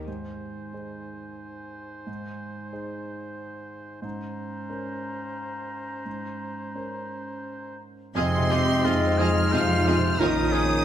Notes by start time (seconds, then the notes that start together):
0.06 G#2 D#4 C5 G#5
0.73 D#4 G#4 C5
2.07 G#2
2.73 D#4 G#4 C5
4.02 G#2 C#4 C5 A#5
4.69 C#4 A#4 C5
6.05 G#2
6.75 C#4 A#4 C5
8.15 F2 C3 G#3 C4 D#4 F4 G#4 D#5 C6
8.38 C3
8.50 C4 F4 G4 G#4 D#5
8.60 D#4
8.84 F2 C4 F4 G#4 D#5
9.07 C5
9.18 F3 C4 F4 G#4 D#5 F6
9.30 G#4
9.52 F2 C3 C4 F4 G#4 C5 D#5 F5
9.75 D#4
9.87 C4 F4 G#4 C5 D#5
9.98 C3
10.19 A#1 A#2 D#3 A#3 C#4 D#4 F4 A#4 C#5 D#6
10.43 F3
10.52 C#4 F4 G#4 A#4 C#5
10.65 C#4